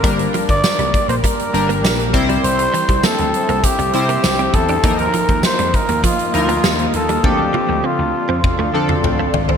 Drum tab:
HH |xxxx-xxxxxxx-xxx|xxxx-xxxxxxx-xxx|xxxx-xxxxxxx-xxx|----------------|
TB |----x-------x---|----x-------x---|----x-------x---|----------------|
SD |----o-------o---|----o-------o---|----o-------o---|----------------|
T1 |----------------|----------------|----------------|o-o-------------|
T2 |----------------|----------------|----------------|--------o--o----|
FT |----------------|----------------|----------------|------------o-oo|
BD |o--o--o-o-----o-|---o----o-----o-|o--o--o-o-------|o-------o-------|